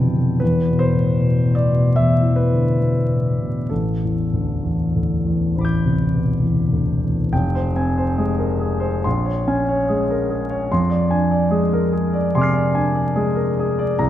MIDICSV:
0, 0, Header, 1, 2, 480
1, 0, Start_track
1, 0, Key_signature, 0, "minor"
1, 0, Tempo, 777202
1, 256, Time_signature, 4, 2, 24, 8
1, 1218, Tempo, 820793
1, 1698, Tempo, 921659
1, 3138, Tempo, 872093
1, 4106, Key_signature, -4, "minor"
1, 5058, Tempo, 823045
1, 8003, End_track
2, 0, Start_track
2, 0, Title_t, "Grand piano"
2, 0, Program_c, 0, 0
2, 0, Control_c, 0, 64, 127
2, 0, Note_on_c, 0, 41, 38
2, 0, Note_on_c, 0, 47, 32
2, 0, Note_on_c, 0, 48, 32
2, 0, Note_on_c, 0, 50, 30
2, 0, Note_on_c, 0, 52, 33
2, 0, Note_on_c, 0, 79, 64
2, 0, Note_on_c, 0, 81, 74
2, 99, Note_off_c, 0, 48, 0
2, 99, Note_on_c, 0, 48, 29
2, 100, Note_off_c, 0, 47, 0
2, 238, Note_off_c, 0, 41, 0
2, 246, Note_on_c, 0, 71, 65
2, 258, Note_off_c, 0, 48, 0
2, 261, Note_on_c, 0, 40, 42
2, 268, Control_c, 0, 64, 0
2, 270, Note_off_c, 0, 79, 0
2, 272, Note_off_c, 0, 50, 0
2, 273, Note_off_c, 0, 52, 0
2, 274, Note_off_c, 0, 81, 0
2, 359, Control_c, 0, 64, 127
2, 435, Note_on_c, 0, 47, 31
2, 487, Note_on_c, 0, 72, 72
2, 493, Note_off_c, 0, 71, 0
2, 578, Note_on_c, 0, 45, 27
2, 684, Note_off_c, 0, 47, 0
2, 739, Note_off_c, 0, 45, 0
2, 741, Note_on_c, 0, 47, 35
2, 894, Note_on_c, 0, 45, 29
2, 957, Note_on_c, 0, 74, 68
2, 972, Note_off_c, 0, 72, 0
2, 994, Note_off_c, 0, 47, 0
2, 1055, Note_off_c, 0, 45, 0
2, 1060, Note_on_c, 0, 47, 32
2, 1196, Note_off_c, 0, 40, 0
2, 1208, Note_off_c, 0, 74, 0
2, 1210, Note_on_c, 0, 76, 67
2, 1216, Note_on_c, 0, 40, 35
2, 1313, Note_off_c, 0, 47, 0
2, 1362, Note_on_c, 0, 52, 30
2, 1444, Note_on_c, 0, 71, 59
2, 1451, Note_off_c, 0, 76, 0
2, 1543, Note_on_c, 0, 50, 25
2, 1627, Note_off_c, 0, 52, 0
2, 1702, Note_off_c, 0, 50, 0
2, 1704, Note_on_c, 0, 47, 27
2, 1859, Note_on_c, 0, 45, 26
2, 1944, Note_off_c, 0, 47, 0
2, 2009, Note_on_c, 0, 47, 26
2, 2010, Note_off_c, 0, 45, 0
2, 2148, Note_off_c, 0, 40, 0
2, 2166, Note_off_c, 0, 71, 0
2, 2168, Note_on_c, 0, 69, 54
2, 2172, Note_off_c, 0, 47, 0
2, 2176, Note_on_c, 0, 33, 35
2, 2181, Control_c, 0, 64, 0
2, 2287, Control_c, 0, 64, 127
2, 2348, Note_on_c, 0, 40, 27
2, 2500, Note_on_c, 0, 38, 24
2, 2607, Note_off_c, 0, 40, 0
2, 2653, Note_on_c, 0, 40, 29
2, 2664, Note_off_c, 0, 38, 0
2, 2825, Note_on_c, 0, 38, 24
2, 2916, Note_off_c, 0, 40, 0
2, 2984, Note_on_c, 0, 40, 26
2, 2985, Note_off_c, 0, 38, 0
2, 3122, Note_off_c, 0, 33, 0
2, 3138, Note_on_c, 0, 72, 22
2, 3143, Note_on_c, 0, 33, 30
2, 3154, Note_on_c, 0, 83, 23
2, 3167, Note_on_c, 0, 86, 22
2, 3187, Note_on_c, 0, 91, 22
2, 3235, Note_off_c, 0, 40, 0
2, 3299, Note_on_c, 0, 48, 25
2, 3454, Note_on_c, 0, 47, 23
2, 3553, Note_off_c, 0, 48, 0
2, 3617, Note_off_c, 0, 47, 0
2, 3617, Note_off_c, 0, 69, 0
2, 3617, Note_on_c, 0, 40, 26
2, 3782, Note_on_c, 0, 38, 23
2, 3880, Note_off_c, 0, 40, 0
2, 3946, Note_off_c, 0, 38, 0
2, 3946, Note_on_c, 0, 40, 24
2, 4083, Note_off_c, 0, 72, 0
2, 4085, Note_off_c, 0, 33, 0
2, 4091, Note_off_c, 0, 83, 0
2, 4097, Note_off_c, 0, 86, 0
2, 4106, Note_off_c, 0, 40, 0
2, 4107, Note_off_c, 0, 91, 0
2, 4111, Note_on_c, 0, 29, 44
2, 4112, Note_on_c, 0, 79, 38
2, 4115, Control_c, 0, 64, 0
2, 4227, Control_c, 0, 64, 127
2, 4235, Note_on_c, 0, 72, 37
2, 4298, Note_off_c, 0, 79, 0
2, 4351, Note_on_c, 0, 60, 36
2, 4352, Note_on_c, 0, 80, 40
2, 4419, Note_off_c, 0, 72, 0
2, 4469, Note_on_c, 0, 72, 37
2, 4537, Note_off_c, 0, 80, 0
2, 4578, Note_on_c, 0, 68, 38
2, 4582, Note_on_c, 0, 56, 37
2, 4656, Note_off_c, 0, 72, 0
2, 4693, Note_on_c, 0, 70, 33
2, 4728, Note_off_c, 0, 60, 0
2, 4770, Note_off_c, 0, 68, 0
2, 4811, Note_on_c, 0, 68, 36
2, 4816, Note_off_c, 0, 70, 0
2, 4922, Note_on_c, 0, 72, 36
2, 4964, Note_off_c, 0, 56, 0
2, 5007, Note_off_c, 0, 68, 0
2, 5040, Note_off_c, 0, 29, 0
2, 5051, Note_off_c, 0, 72, 0
2, 5056, Note_on_c, 0, 84, 41
2, 5061, Note_on_c, 0, 34, 41
2, 5070, Control_c, 0, 64, 0
2, 5177, Note_on_c, 0, 73, 36
2, 5193, Control_c, 0, 64, 127
2, 5259, Note_off_c, 0, 84, 0
2, 5308, Note_on_c, 0, 61, 37
2, 5308, Note_on_c, 0, 80, 38
2, 5379, Note_off_c, 0, 73, 0
2, 5432, Note_on_c, 0, 73, 37
2, 5502, Note_off_c, 0, 80, 0
2, 5546, Note_on_c, 0, 68, 36
2, 5552, Note_on_c, 0, 56, 34
2, 5621, Note_off_c, 0, 73, 0
2, 5673, Note_on_c, 0, 70, 34
2, 5691, Note_off_c, 0, 61, 0
2, 5738, Note_off_c, 0, 68, 0
2, 5786, Note_on_c, 0, 68, 38
2, 5790, Note_off_c, 0, 70, 0
2, 5908, Note_on_c, 0, 73, 39
2, 5933, Note_off_c, 0, 56, 0
2, 5979, Note_off_c, 0, 68, 0
2, 6005, Note_off_c, 0, 34, 0
2, 6028, Note_off_c, 0, 73, 0
2, 6032, Note_on_c, 0, 41, 47
2, 6032, Note_on_c, 0, 84, 43
2, 6040, Control_c, 0, 64, 0
2, 6131, Control_c, 0, 64, 127
2, 6138, Note_on_c, 0, 74, 39
2, 6223, Note_off_c, 0, 84, 0
2, 6259, Note_on_c, 0, 80, 45
2, 6260, Note_on_c, 0, 62, 39
2, 6335, Note_off_c, 0, 74, 0
2, 6380, Note_on_c, 0, 74, 38
2, 6456, Note_off_c, 0, 80, 0
2, 6492, Note_on_c, 0, 56, 39
2, 6494, Note_on_c, 0, 68, 41
2, 6576, Note_off_c, 0, 74, 0
2, 6624, Note_on_c, 0, 70, 38
2, 6648, Note_off_c, 0, 62, 0
2, 6693, Note_off_c, 0, 68, 0
2, 6738, Note_on_c, 0, 68, 41
2, 6745, Note_off_c, 0, 70, 0
2, 6860, Note_on_c, 0, 74, 40
2, 6881, Note_off_c, 0, 56, 0
2, 6931, Note_off_c, 0, 68, 0
2, 6961, Note_off_c, 0, 41, 0
2, 6984, Note_on_c, 0, 80, 31
2, 6985, Note_on_c, 0, 84, 42
2, 6986, Note_on_c, 0, 48, 41
2, 7002, Note_on_c, 0, 86, 32
2, 7022, Note_on_c, 0, 89, 33
2, 7032, Note_on_c, 0, 96, 32
2, 7050, Note_off_c, 0, 74, 0
2, 7090, Note_on_c, 0, 74, 40
2, 7171, Note_off_c, 0, 84, 0
2, 7208, Note_off_c, 0, 80, 0
2, 7215, Note_on_c, 0, 62, 38
2, 7217, Note_on_c, 0, 80, 43
2, 7283, Note_off_c, 0, 74, 0
2, 7337, Note_on_c, 0, 74, 40
2, 7361, Note_off_c, 0, 48, 0
2, 7407, Note_off_c, 0, 80, 0
2, 7456, Note_on_c, 0, 68, 42
2, 7457, Note_on_c, 0, 56, 38
2, 7528, Note_off_c, 0, 74, 0
2, 7570, Note_on_c, 0, 70, 37
2, 7599, Note_off_c, 0, 62, 0
2, 7649, Note_off_c, 0, 68, 0
2, 7694, Note_off_c, 0, 70, 0
2, 7710, Note_on_c, 0, 68, 43
2, 7824, Note_on_c, 0, 74, 45
2, 7844, Note_off_c, 0, 56, 0
2, 7898, Note_off_c, 0, 68, 0
2, 7927, Note_off_c, 0, 86, 0
2, 7937, Note_off_c, 0, 89, 0
2, 7939, Note_on_c, 0, 36, 51
2, 7939, Note_on_c, 0, 82, 48
2, 7942, Note_off_c, 0, 96, 0
2, 7943, Note_off_c, 0, 74, 0
2, 7950, Control_c, 0, 64, 0
2, 8003, Note_off_c, 0, 36, 0
2, 8003, Note_off_c, 0, 82, 0
2, 8003, End_track
0, 0, End_of_file